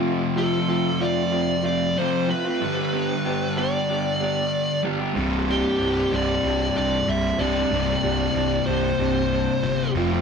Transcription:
<<
  \new Staff \with { instrumentName = "Lead electric guitar" } { \time 4/4 \key f \lydian \tempo 4 = 94 r8 a'4 d''4 d''8 c''8 b'8~ | b'4. d''2 r8 | r8 g'4 d''4 d''8 e''8 d''8~ | d''4. c''2 r8 | }
  \new Staff \with { instrumentName = "Clean electric guitar" } { \time 4/4 \key f \lydian r8 <f a c' f'>16 r16 <f a c' f'>16 r16 <f a c' f'>16 r16 <f a c' f'>16 r16 <f a c' f'>16 r8. <f a c' f'>16 <f a c' f'>16 | r8 <g b d' g'>16 r16 <g b d' g'>16 r16 <g b d' g'>16 r16 <g b d' g'>16 r16 <g b d' g'>16 r8. <g b d' g'>16 <g b d' g'>16 | r8 <g, c g d'>16 r16 <g, c g d'>16 r16 <g, c g d'>16 r16 <g, c g d'>16 r16 <g, c g d'>16 r8. <g, c g d'>16 <g, c g d'>16 | r8 <g, c g d'>16 r16 <g, c g d'>16 r16 <g, c g d'>16 r16 <g, c g d'>16 r16 <g, c g d'>16 r8. <f a c' f'>16 <f a c' f'>16 | }
  \new Staff \with { instrumentName = "Distorted electric guitar" } { \clef bass \time 4/4 \key f \lydian <f, c f>2. <f, c f>8 r8 | <g, d g>2.~ <g, d g>8 <g, d g>8 | <c, g, c>2.~ <c, g, c>8 <c, g, c>8 | <c, g, c>2.~ <c, g, c>8 <f, c f>8 | }
  \new Staff \with { instrumentName = "Picked electric bass" } { \clef bass \time 4/4 \key f \lydian r1 | r1 | c,,4 c,,8 c,,8 c,,8 c,,8 c,,8 c,,8 | c,,8 c,,8 c,,8 c,,8 c,,4 g,,8 f,,8 | }
>>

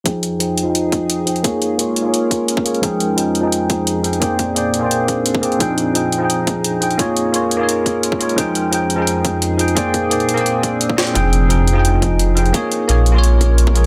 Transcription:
<<
  \new Staff \with { instrumentName = "Tine electric piano" } { \time 4/4 \key f \minor \tempo 4 = 173 <f ees' aes' g''>4 <f ees' aes' g''>8. <f ees' aes' g''>4.~ <f ees' aes' g''>16 <f ees' aes' g''>8 | <bes f' aes' des''>4 <bes f' aes' des''>8. <bes f' aes' des''>4.~ <bes f' aes' des''>16 <bes f' aes' des''>8 | <f ees' aes' g''>4 <f ees' aes' g''>8. <f ees' aes' g''>4.~ <f ees' aes' g''>16 <f ees' aes' g''>8 | <bes aes' c'' d'' g''>4 <bes aes' c'' d'' g''>8. <bes aes' c'' d'' g''>4.~ <bes aes' c'' d'' g''>16 <bes aes' c'' d'' g''>8 |
<f ees' aes' g''>4 <f ees' aes' g''>8. <f ees' aes' g''>4.~ <f ees' aes' g''>16 <f ees' aes' g''>8 | <bes f' aes' des''>4 <bes f' aes' des''>8. <bes f' aes' des''>4.~ <bes f' aes' des''>16 <bes f' aes' des''>8 | <f ees' aes' g''>4 <f ees' aes' g''>8. <f ees' aes' g''>4.~ <f ees' aes' g''>16 <f ees' aes' g''>8 | <bes aes' c'' d'' g''>4 <bes aes' c'' d'' g''>8. <bes aes' c'' d'' g''>4.~ <bes aes' c'' d'' g''>16 <bes aes' c'' d'' g''>8 |
<f ees' aes' g''>4 <f ees' aes' g''>8. <f ees' aes' g''>4.~ <f ees' aes' g''>16 <f ees' aes' g''>8 | <bes f' aes' des''>4 <bes f' aes' des''>8. <bes f' aes' des''>4.~ <bes f' aes' des''>16 <bes f' aes' des''>8 | }
  \new Staff \with { instrumentName = "Ambient pad" } { \time 4/4 \key f \minor << { aes'1 | bes'1 | aes'1~ | aes'1~ |
aes'1 | bes'1 | aes'1~ | aes'1~ |
aes'1 | bes'1 | } \\ { <f, ees'>1 | <aes des'>1 | <f, ees'>1 | <bes, c' d'>1 |
<f, ees'>1 | <aes des'>1 | <f, ees'>1 | <bes, c' d'>1 |
ees'1 | <aes des'>1 | } >> }
  \new Staff \with { instrumentName = "Detuned saw bass" } { \clef bass \time 4/4 \key f \minor r1 | r1 | r1 | r1 |
r1 | r1 | r1 | r1 |
f,,1 | r4 bes,,2. | }
  \new DrumStaff \with { instrumentName = "Drums" } \drummode { \time 4/4 <hh bd>8 hh8 hh8 hh8 hh8 <hh bd>8 hh8 hh16 hh16 | <hh bd>8 hh8 hh8 hh8 hh8 <hh bd>8 hh16 bd16 hh16 hh16 | <hh bd>8 hh8 hh8 hh8 hh8 <hh bd>8 hh8 hh16 hh16 | <hh bd>8 <hh bd>8 hh8 hh8 hh8 <hh bd>8 hh16 bd16 hh16 hh16 |
<hh bd>8 hh8 hh8 hh8 hh8 <hh bd>8 hh8 hh16 hh16 | <hh bd>8 hh8 hh8 hh8 hh8 <hh bd>8 hh16 bd16 hh16 hh16 | <hh bd>8 hh8 hh8 hh8 hh8 <hh bd>8 hh8 hh16 hh16 | <hh bd>8 <hh bd>8 hh16 hh16 hh16 hh16 hh8 <hh bd>8 hh16 bd16 <hh sn>16 hh16 |
<hh bd>8 hh8 hh8 hh8 hh8 <hh bd>8 hh8 hh16 hh16 | <hh bd>8 hh8 hh8 hh8 hh8 <hh bd>8 hh16 bd16 hh8 | }
>>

